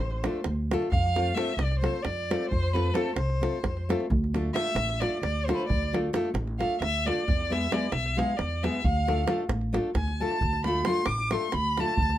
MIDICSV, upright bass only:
0, 0, Header, 1, 2, 480
1, 0, Start_track
1, 0, Tempo, 454201
1, 976, Time_signature, 7, 3, 24, 8
1, 6733, Tempo, 449775
1, 12933, End_track
2, 0, Start_track
2, 0, Title_t, "Upright bass"
2, 0, Program_c, 0, 32
2, 0, Note_on_c, 0, 33, 96
2, 274, Note_off_c, 0, 33, 0
2, 479, Note_on_c, 0, 38, 86
2, 778, Note_off_c, 0, 38, 0
2, 970, Note_on_c, 0, 41, 93
2, 1383, Note_off_c, 0, 41, 0
2, 1659, Note_on_c, 0, 36, 87
2, 1959, Note_off_c, 0, 36, 0
2, 2167, Note_on_c, 0, 41, 85
2, 2465, Note_off_c, 0, 41, 0
2, 2654, Note_on_c, 0, 41, 84
2, 3065, Note_off_c, 0, 41, 0
2, 3340, Note_on_c, 0, 36, 82
2, 3640, Note_off_c, 0, 36, 0
2, 3840, Note_on_c, 0, 41, 82
2, 4139, Note_off_c, 0, 41, 0
2, 4334, Note_on_c, 0, 38, 102
2, 4745, Note_off_c, 0, 38, 0
2, 5018, Note_on_c, 0, 33, 99
2, 5318, Note_off_c, 0, 33, 0
2, 5514, Note_on_c, 0, 38, 82
2, 5813, Note_off_c, 0, 38, 0
2, 6016, Note_on_c, 0, 38, 91
2, 6424, Note_off_c, 0, 38, 0
2, 6700, Note_on_c, 0, 33, 104
2, 6999, Note_off_c, 0, 33, 0
2, 7197, Note_on_c, 0, 38, 84
2, 7497, Note_off_c, 0, 38, 0
2, 7701, Note_on_c, 0, 40, 105
2, 8110, Note_off_c, 0, 40, 0
2, 8387, Note_on_c, 0, 35, 93
2, 8685, Note_off_c, 0, 35, 0
2, 8888, Note_on_c, 0, 40, 92
2, 9185, Note_off_c, 0, 40, 0
2, 9379, Note_on_c, 0, 38, 93
2, 9789, Note_off_c, 0, 38, 0
2, 10059, Note_on_c, 0, 33, 93
2, 10359, Note_off_c, 0, 33, 0
2, 10549, Note_on_c, 0, 38, 81
2, 10851, Note_off_c, 0, 38, 0
2, 11051, Note_on_c, 0, 38, 94
2, 11462, Note_off_c, 0, 38, 0
2, 11737, Note_on_c, 0, 33, 87
2, 12036, Note_off_c, 0, 33, 0
2, 12245, Note_on_c, 0, 38, 91
2, 12541, Note_off_c, 0, 38, 0
2, 12739, Note_on_c, 0, 38, 97
2, 12933, Note_off_c, 0, 38, 0
2, 12933, End_track
0, 0, End_of_file